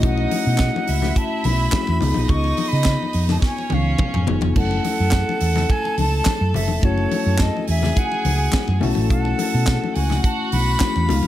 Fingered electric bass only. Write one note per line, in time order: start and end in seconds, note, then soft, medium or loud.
0.04 0.26 B1 loud
0.47 0.69 B2 loud
0.89 1.11 C#2 medium
1.45 1.67 B1 loud
1.89 1.99 E2 medium
2.02 2.13 C#2 loud
2.17 2.27 B1 medium
2.30 2.52 C#2 loud
2.73 2.95 C#3 medium
3.15 3.37 F2 loud
3.72 3.94 C#2 loud
4.15 4.25 F2 medium
4.28 4.40 F#1 loud
4.43 4.54 F1 medium
4.56 4.78 F#1 loud
5.00 5.22 F#2 medium
5.41 5.64 E2 medium
5.98 6.20 C#2 medium
6.41 6.52 F#2 medium
6.55 6.70 F#1 loud
6.70 6.80 E1 medium
6.83 7.05 F#1 loud
7.26 7.49 F#2 medium
7.69 7.91 E2 medium
8.25 8.47 C#2 medium
8.68 8.79 F#2 loud
8.83 8.94 B1 loud
8.97 9.11 A1 medium
9.11 9.33 B1 loud
9.54 9.77 B2 loud
9.96 10.18 C#2 medium
10.53 10.75 B1 loud
10.96 11.07 E2 medium
11.10 11.21 C#2 loud